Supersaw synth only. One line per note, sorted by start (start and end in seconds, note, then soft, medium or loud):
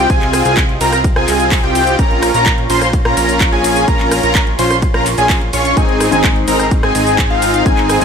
0.10 0.43 C4 loud
0.10 0.43 F4 medium
0.10 0.43 G#4 loud
0.45 0.62 C4 loud
0.45 0.62 F4 medium
0.45 0.62 G#4 loud
0.81 0.98 C4 medium
0.81 0.98 F4 medium
0.81 0.98 A#4 loud
1.16 1.26 C4 loud
1.16 1.26 F4 medium
1.16 1.26 G#4 loud
1.28 1.61 C4 medium
1.28 1.61 F4 medium
1.28 1.61 G#4 medium
1.64 1.96 C4 loud
1.64 1.96 F4 medium
1.64 1.96 G4 loud
1.99 2.31 C#4 loud
1.99 2.31 F4 medium
1.99 2.32 A#4 loud
2.34 2.51 C#4 loud
2.34 2.51 F4 medium
2.34 2.51 A#4 loud
2.70 2.87 C#4 loud
2.70 2.87 F4 medium
2.70 2.87 C5 loud
3.05 3.15 C#4 loud
3.05 3.15 F4 medium
3.05 3.15 A#4 loud
3.17 3.50 C#4 medium
3.17 3.50 F4 medium
3.17 3.50 A#4 medium
3.52 3.85 C#4 loud
3.52 3.85 F4 medium
3.52 3.85 G#4 loud
3.88 4.21 C#4 medium
3.88 4.21 F4 medium
3.88 4.21 A#4 loud
4.23 4.40 C#4 loud
4.23 4.41 F4 medium
4.23 4.41 A#4 loud
4.59 4.76 C#4 medium
4.59 4.76 F4 medium
4.59 4.76 C5 loud
4.94 5.04 C#4 loud
4.94 5.04 F4 medium
4.94 5.04 A#4 loud
5.18 5.35 C#4 loud
5.18 5.35 F4 medium
5.18 5.35 G#4 loud
5.53 5.74 C#4 medium
5.53 5.74 F4 medium
5.53 5.74 C#5 medium
5.77 6.09 C4 medium
5.77 6.10 D#4 medium
5.77 6.10 G#4 loud
6.12 6.29 C4 loud
6.12 6.29 D#4 medium
6.12 6.29 G#4 loud
6.48 6.65 C4 loud
6.48 6.65 D#4 medium
6.48 6.65 A#4 loud
6.83 6.93 C4 loud
6.83 6.93 D#4 medium
6.83 6.93 G#4 loud
6.95 7.27 C4 medium
6.95 7.27 D#4 medium
6.95 7.27 G#4 medium
7.30 7.63 C4 loud
7.30 7.63 D#4 medium
7.30 7.63 F4 loud
7.66 7.98 C4 medium
7.66 7.98 D#4 medium
7.66 7.98 G#4 loud
8.01 8.05 C4 loud
8.01 8.05 D#4 medium
8.01 8.05 G#4 loud